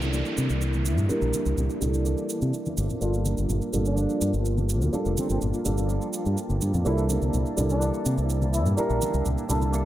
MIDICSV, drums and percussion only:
0, 0, Header, 1, 2, 480
1, 0, Start_track
1, 0, Tempo, 480000
1, 1095, Time_signature, 4, 2, 24, 8
1, 9850, End_track
2, 0, Start_track
2, 0, Title_t, "Drums"
2, 16, Note_on_c, 9, 82, 30
2, 19, Note_on_c, 9, 54, 77
2, 19, Note_on_c, 9, 63, 64
2, 116, Note_off_c, 9, 82, 0
2, 119, Note_off_c, 9, 54, 0
2, 119, Note_off_c, 9, 63, 0
2, 132, Note_on_c, 9, 82, 42
2, 232, Note_off_c, 9, 82, 0
2, 255, Note_on_c, 9, 82, 20
2, 355, Note_off_c, 9, 82, 0
2, 374, Note_on_c, 9, 82, 72
2, 474, Note_off_c, 9, 82, 0
2, 497, Note_on_c, 9, 82, 32
2, 597, Note_off_c, 9, 82, 0
2, 613, Note_on_c, 9, 82, 42
2, 713, Note_off_c, 9, 82, 0
2, 736, Note_on_c, 9, 54, 35
2, 736, Note_on_c, 9, 82, 19
2, 742, Note_on_c, 9, 63, 83
2, 836, Note_off_c, 9, 54, 0
2, 836, Note_off_c, 9, 82, 0
2, 842, Note_off_c, 9, 63, 0
2, 854, Note_on_c, 9, 82, 71
2, 954, Note_off_c, 9, 82, 0
2, 978, Note_on_c, 9, 64, 77
2, 978, Note_on_c, 9, 82, 30
2, 980, Note_on_c, 9, 54, 77
2, 1078, Note_off_c, 9, 64, 0
2, 1078, Note_off_c, 9, 82, 0
2, 1080, Note_off_c, 9, 54, 0
2, 1095, Note_on_c, 9, 82, 39
2, 1102, Note_on_c, 9, 54, 56
2, 1195, Note_off_c, 9, 82, 0
2, 1202, Note_off_c, 9, 54, 0
2, 1217, Note_on_c, 9, 82, 20
2, 1317, Note_off_c, 9, 82, 0
2, 1334, Note_on_c, 9, 82, 72
2, 1340, Note_on_c, 9, 63, 79
2, 1434, Note_off_c, 9, 82, 0
2, 1440, Note_off_c, 9, 63, 0
2, 1457, Note_on_c, 9, 54, 78
2, 1457, Note_on_c, 9, 82, 29
2, 1557, Note_off_c, 9, 54, 0
2, 1557, Note_off_c, 9, 82, 0
2, 1569, Note_on_c, 9, 64, 82
2, 1571, Note_on_c, 9, 54, 63
2, 1576, Note_on_c, 9, 82, 40
2, 1669, Note_off_c, 9, 64, 0
2, 1671, Note_off_c, 9, 54, 0
2, 1676, Note_off_c, 9, 82, 0
2, 1699, Note_on_c, 9, 82, 20
2, 1700, Note_on_c, 9, 54, 36
2, 1799, Note_off_c, 9, 82, 0
2, 1800, Note_off_c, 9, 54, 0
2, 1816, Note_on_c, 9, 82, 69
2, 1819, Note_on_c, 9, 64, 82
2, 1916, Note_off_c, 9, 82, 0
2, 1919, Note_off_c, 9, 64, 0
2, 1932, Note_on_c, 9, 54, 80
2, 1938, Note_on_c, 9, 82, 29
2, 1945, Note_on_c, 9, 63, 60
2, 2032, Note_off_c, 9, 54, 0
2, 2038, Note_off_c, 9, 82, 0
2, 2045, Note_off_c, 9, 63, 0
2, 2055, Note_on_c, 9, 82, 39
2, 2056, Note_on_c, 9, 54, 61
2, 2155, Note_off_c, 9, 82, 0
2, 2156, Note_off_c, 9, 54, 0
2, 2176, Note_on_c, 9, 82, 19
2, 2179, Note_on_c, 9, 54, 33
2, 2276, Note_off_c, 9, 82, 0
2, 2279, Note_off_c, 9, 54, 0
2, 2293, Note_on_c, 9, 82, 67
2, 2393, Note_off_c, 9, 82, 0
2, 2416, Note_on_c, 9, 82, 31
2, 2516, Note_off_c, 9, 82, 0
2, 2535, Note_on_c, 9, 82, 40
2, 2635, Note_off_c, 9, 82, 0
2, 2656, Note_on_c, 9, 54, 36
2, 2657, Note_on_c, 9, 82, 18
2, 2662, Note_on_c, 9, 63, 87
2, 2756, Note_off_c, 9, 54, 0
2, 2757, Note_off_c, 9, 82, 0
2, 2762, Note_off_c, 9, 63, 0
2, 2774, Note_on_c, 9, 82, 67
2, 2874, Note_off_c, 9, 82, 0
2, 2887, Note_on_c, 9, 54, 73
2, 2897, Note_on_c, 9, 82, 30
2, 2898, Note_on_c, 9, 64, 82
2, 2987, Note_off_c, 9, 54, 0
2, 2997, Note_off_c, 9, 82, 0
2, 2998, Note_off_c, 9, 64, 0
2, 3014, Note_on_c, 9, 82, 40
2, 3114, Note_off_c, 9, 82, 0
2, 3136, Note_on_c, 9, 82, 19
2, 3236, Note_off_c, 9, 82, 0
2, 3253, Note_on_c, 9, 63, 86
2, 3253, Note_on_c, 9, 82, 68
2, 3353, Note_off_c, 9, 63, 0
2, 3353, Note_off_c, 9, 82, 0
2, 3376, Note_on_c, 9, 82, 30
2, 3378, Note_on_c, 9, 54, 71
2, 3476, Note_off_c, 9, 82, 0
2, 3478, Note_off_c, 9, 54, 0
2, 3490, Note_on_c, 9, 64, 78
2, 3493, Note_on_c, 9, 82, 39
2, 3495, Note_on_c, 9, 54, 56
2, 3590, Note_off_c, 9, 64, 0
2, 3593, Note_off_c, 9, 82, 0
2, 3595, Note_off_c, 9, 54, 0
2, 3615, Note_on_c, 9, 82, 19
2, 3626, Note_on_c, 9, 54, 32
2, 3715, Note_off_c, 9, 82, 0
2, 3726, Note_off_c, 9, 54, 0
2, 3732, Note_on_c, 9, 82, 67
2, 3735, Note_on_c, 9, 64, 93
2, 3832, Note_off_c, 9, 82, 0
2, 3835, Note_off_c, 9, 64, 0
2, 3854, Note_on_c, 9, 82, 30
2, 3855, Note_on_c, 9, 63, 64
2, 3868, Note_on_c, 9, 54, 67
2, 3954, Note_off_c, 9, 82, 0
2, 3955, Note_off_c, 9, 63, 0
2, 3968, Note_off_c, 9, 54, 0
2, 3969, Note_on_c, 9, 54, 60
2, 3972, Note_on_c, 9, 82, 39
2, 4069, Note_off_c, 9, 54, 0
2, 4072, Note_off_c, 9, 82, 0
2, 4095, Note_on_c, 9, 82, 20
2, 4195, Note_off_c, 9, 82, 0
2, 4214, Note_on_c, 9, 82, 71
2, 4313, Note_off_c, 9, 82, 0
2, 4336, Note_on_c, 9, 82, 30
2, 4342, Note_on_c, 9, 54, 66
2, 4435, Note_off_c, 9, 82, 0
2, 4442, Note_off_c, 9, 54, 0
2, 4453, Note_on_c, 9, 82, 42
2, 4553, Note_off_c, 9, 82, 0
2, 4574, Note_on_c, 9, 63, 93
2, 4576, Note_on_c, 9, 82, 18
2, 4577, Note_on_c, 9, 54, 33
2, 4674, Note_off_c, 9, 63, 0
2, 4676, Note_off_c, 9, 82, 0
2, 4677, Note_off_c, 9, 54, 0
2, 4692, Note_on_c, 9, 82, 68
2, 4792, Note_off_c, 9, 82, 0
2, 4815, Note_on_c, 9, 82, 31
2, 4823, Note_on_c, 9, 54, 67
2, 4824, Note_on_c, 9, 64, 69
2, 4915, Note_off_c, 9, 82, 0
2, 4923, Note_off_c, 9, 54, 0
2, 4924, Note_off_c, 9, 64, 0
2, 4932, Note_on_c, 9, 82, 39
2, 5032, Note_off_c, 9, 82, 0
2, 5055, Note_on_c, 9, 82, 20
2, 5155, Note_off_c, 9, 82, 0
2, 5172, Note_on_c, 9, 82, 73
2, 5176, Note_on_c, 9, 63, 92
2, 5272, Note_off_c, 9, 82, 0
2, 5276, Note_off_c, 9, 63, 0
2, 5295, Note_on_c, 9, 82, 31
2, 5395, Note_off_c, 9, 82, 0
2, 5410, Note_on_c, 9, 54, 53
2, 5414, Note_on_c, 9, 82, 41
2, 5416, Note_on_c, 9, 64, 70
2, 5510, Note_off_c, 9, 54, 0
2, 5514, Note_off_c, 9, 82, 0
2, 5516, Note_off_c, 9, 64, 0
2, 5536, Note_on_c, 9, 54, 33
2, 5536, Note_on_c, 9, 82, 20
2, 5635, Note_off_c, 9, 82, 0
2, 5636, Note_off_c, 9, 54, 0
2, 5653, Note_on_c, 9, 82, 67
2, 5656, Note_on_c, 9, 64, 78
2, 5753, Note_off_c, 9, 82, 0
2, 5756, Note_off_c, 9, 64, 0
2, 5776, Note_on_c, 9, 82, 31
2, 5778, Note_on_c, 9, 54, 77
2, 5781, Note_on_c, 9, 63, 66
2, 5876, Note_off_c, 9, 82, 0
2, 5878, Note_off_c, 9, 54, 0
2, 5881, Note_off_c, 9, 63, 0
2, 5893, Note_on_c, 9, 82, 40
2, 5993, Note_off_c, 9, 82, 0
2, 6016, Note_on_c, 9, 82, 19
2, 6116, Note_off_c, 9, 82, 0
2, 6132, Note_on_c, 9, 82, 70
2, 6232, Note_off_c, 9, 82, 0
2, 6247, Note_on_c, 9, 54, 75
2, 6256, Note_on_c, 9, 82, 31
2, 6347, Note_off_c, 9, 54, 0
2, 6356, Note_off_c, 9, 82, 0
2, 6374, Note_on_c, 9, 82, 40
2, 6474, Note_off_c, 9, 82, 0
2, 6492, Note_on_c, 9, 63, 85
2, 6494, Note_on_c, 9, 54, 36
2, 6497, Note_on_c, 9, 82, 19
2, 6592, Note_off_c, 9, 63, 0
2, 6594, Note_off_c, 9, 54, 0
2, 6597, Note_off_c, 9, 82, 0
2, 6613, Note_on_c, 9, 82, 67
2, 6713, Note_off_c, 9, 82, 0
2, 6729, Note_on_c, 9, 54, 73
2, 6735, Note_on_c, 9, 64, 75
2, 6738, Note_on_c, 9, 82, 31
2, 6829, Note_off_c, 9, 54, 0
2, 6835, Note_off_c, 9, 64, 0
2, 6838, Note_off_c, 9, 82, 0
2, 6855, Note_on_c, 9, 82, 41
2, 6955, Note_off_c, 9, 82, 0
2, 6978, Note_on_c, 9, 82, 21
2, 7078, Note_off_c, 9, 82, 0
2, 7091, Note_on_c, 9, 63, 96
2, 7094, Note_on_c, 9, 82, 72
2, 7191, Note_off_c, 9, 63, 0
2, 7194, Note_off_c, 9, 82, 0
2, 7211, Note_on_c, 9, 54, 68
2, 7218, Note_on_c, 9, 82, 31
2, 7311, Note_off_c, 9, 54, 0
2, 7318, Note_off_c, 9, 82, 0
2, 7334, Note_on_c, 9, 54, 56
2, 7335, Note_on_c, 9, 64, 72
2, 7336, Note_on_c, 9, 82, 42
2, 7434, Note_off_c, 9, 54, 0
2, 7435, Note_off_c, 9, 64, 0
2, 7436, Note_off_c, 9, 82, 0
2, 7458, Note_on_c, 9, 82, 21
2, 7464, Note_on_c, 9, 54, 33
2, 7558, Note_off_c, 9, 82, 0
2, 7564, Note_off_c, 9, 54, 0
2, 7572, Note_on_c, 9, 64, 88
2, 7575, Note_on_c, 9, 82, 74
2, 7672, Note_off_c, 9, 64, 0
2, 7675, Note_off_c, 9, 82, 0
2, 7694, Note_on_c, 9, 54, 72
2, 7697, Note_on_c, 9, 82, 33
2, 7699, Note_on_c, 9, 63, 61
2, 7794, Note_off_c, 9, 54, 0
2, 7797, Note_off_c, 9, 82, 0
2, 7799, Note_off_c, 9, 63, 0
2, 7815, Note_on_c, 9, 54, 61
2, 7815, Note_on_c, 9, 82, 43
2, 7915, Note_off_c, 9, 54, 0
2, 7915, Note_off_c, 9, 82, 0
2, 7938, Note_on_c, 9, 82, 20
2, 8038, Note_off_c, 9, 82, 0
2, 8055, Note_on_c, 9, 82, 74
2, 8155, Note_off_c, 9, 82, 0
2, 8178, Note_on_c, 9, 54, 74
2, 8178, Note_on_c, 9, 82, 31
2, 8278, Note_off_c, 9, 54, 0
2, 8278, Note_off_c, 9, 82, 0
2, 8295, Note_on_c, 9, 82, 44
2, 8395, Note_off_c, 9, 82, 0
2, 8416, Note_on_c, 9, 63, 88
2, 8418, Note_on_c, 9, 54, 38
2, 8418, Note_on_c, 9, 82, 20
2, 8516, Note_off_c, 9, 63, 0
2, 8518, Note_off_c, 9, 54, 0
2, 8518, Note_off_c, 9, 82, 0
2, 8536, Note_on_c, 9, 82, 68
2, 8636, Note_off_c, 9, 82, 0
2, 8655, Note_on_c, 9, 54, 69
2, 8658, Note_on_c, 9, 64, 73
2, 8659, Note_on_c, 9, 82, 31
2, 8755, Note_off_c, 9, 54, 0
2, 8758, Note_off_c, 9, 64, 0
2, 8759, Note_off_c, 9, 82, 0
2, 8769, Note_on_c, 9, 54, 62
2, 8775, Note_on_c, 9, 82, 44
2, 8869, Note_off_c, 9, 54, 0
2, 8875, Note_off_c, 9, 82, 0
2, 8897, Note_on_c, 9, 54, 35
2, 8899, Note_on_c, 9, 82, 22
2, 8997, Note_off_c, 9, 54, 0
2, 8999, Note_off_c, 9, 82, 0
2, 9016, Note_on_c, 9, 82, 73
2, 9018, Note_on_c, 9, 63, 95
2, 9115, Note_off_c, 9, 82, 0
2, 9118, Note_off_c, 9, 63, 0
2, 9127, Note_on_c, 9, 54, 82
2, 9137, Note_on_c, 9, 82, 32
2, 9227, Note_off_c, 9, 54, 0
2, 9237, Note_off_c, 9, 82, 0
2, 9253, Note_on_c, 9, 54, 54
2, 9254, Note_on_c, 9, 64, 80
2, 9254, Note_on_c, 9, 82, 44
2, 9353, Note_off_c, 9, 54, 0
2, 9354, Note_off_c, 9, 64, 0
2, 9354, Note_off_c, 9, 82, 0
2, 9377, Note_on_c, 9, 54, 37
2, 9378, Note_on_c, 9, 82, 21
2, 9477, Note_off_c, 9, 54, 0
2, 9478, Note_off_c, 9, 82, 0
2, 9490, Note_on_c, 9, 64, 85
2, 9495, Note_on_c, 9, 82, 78
2, 9590, Note_off_c, 9, 64, 0
2, 9595, Note_off_c, 9, 82, 0
2, 9614, Note_on_c, 9, 63, 55
2, 9616, Note_on_c, 9, 54, 70
2, 9618, Note_on_c, 9, 82, 33
2, 9714, Note_off_c, 9, 63, 0
2, 9716, Note_off_c, 9, 54, 0
2, 9718, Note_off_c, 9, 82, 0
2, 9731, Note_on_c, 9, 54, 60
2, 9734, Note_on_c, 9, 82, 43
2, 9831, Note_off_c, 9, 54, 0
2, 9834, Note_off_c, 9, 82, 0
2, 9850, End_track
0, 0, End_of_file